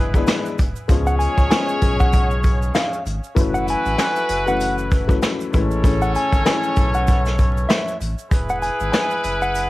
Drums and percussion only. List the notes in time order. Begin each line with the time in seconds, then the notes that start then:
0.14 kick, shaker
0.27 snare, closed hi-hat, shaker
0.46 shaker
0.58 kick, closed hi-hat, shaker
0.76 shaker
0.89 kick, closed hi-hat, shaker
1.07 shaker
1.20 closed hi-hat, shaker
1.38 kick, closed hi-hat, shaker
1.51 snare, closed hi-hat, shaker
1.68 shaker
1.81 kick, closed hi-hat, shaker
2.00 kick, shaker
2.13 kick, closed hi-hat, shaker
2.31 shaker
2.44 kick, closed hi-hat, shaker
2.62 shaker
2.75 snare, closed hi-hat, shaker
2.93 shaker
3.06 closed hi-hat, shaker
3.24 shaker
3.36 kick, closed hi-hat, shaker
3.54 shaker
3.68 closed hi-hat, shaker
3.86 closed hi-hat, shaker
3.98 snare, closed hi-hat, shaker
4.16 shaker
4.29 closed hi-hat, shaker
4.47 shaker
4.60 closed hi-hat, shaker
4.78 shaker
4.91 kick, closed hi-hat, shaker
5.09 kick, shaker
5.22 snare, closed hi-hat, shaker
5.41 shaker
5.53 kick, closed hi-hat, shaker
5.71 shaker
5.84 kick, closed hi-hat, shaker
6.02 shaker
6.15 closed hi-hat, shaker
6.33 kick, closed hi-hat, shaker
6.46 snare, closed hi-hat, shaker
6.63 shaker
6.76 kick, closed hi-hat, shaker
6.94 shaker
7.07 kick, closed hi-hat, shaker
7.25 snare, shaker
7.38 kick, closed hi-hat, shaker
7.57 shaker
7.69 snare, closed hi-hat, shaker
7.88 shaker
8.01 closed hi-hat, shaker
8.18 shaker
8.31 kick, closed hi-hat, shaker
8.49 shaker
8.62 closed hi-hat, shaker
8.80 shaker
8.93 snare, closed hi-hat, shaker
9.11 shaker
9.23 closed hi-hat, shaker
9.42 shaker
9.55 closed hi-hat, shaker